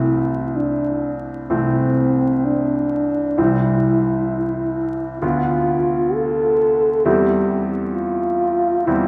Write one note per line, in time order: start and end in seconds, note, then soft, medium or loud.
0.00 1.46 C2 soft
0.00 1.46 E3 soft
0.00 1.46 A3 soft
0.00 1.46 C4 soft
0.00 0.57 E4 soft
0.56 1.23 D4 soft
1.50 3.34 C2 soft
1.50 3.34 E3 soft
1.50 3.34 A3 soft
1.50 3.34 C4 soft
1.50 2.47 C4 soft
2.45 3.40 D4 soft
3.38 5.18 C2 soft
3.38 5.18 E3 soft
3.38 5.19 G3 soft
3.38 5.19 C4 soft
3.38 5.21 E4 soft
5.22 7.01 D2 soft
5.22 7.01 D3 soft
5.22 7.01 B3 soft
5.22 6.16 F4 medium
5.22 7.01 F4 soft
6.14 7.07 A4 medium
7.05 8.83 E2 soft
7.05 8.83 G3 soft
7.05 8.84 C4 soft
7.05 8.83 E4 soft
7.05 7.69 G4 soft
7.94 8.88 F4 medium
8.86 9.08 E2 soft
8.86 9.08 G3 soft
8.86 9.08 C4 soft
8.86 9.08 E4 soft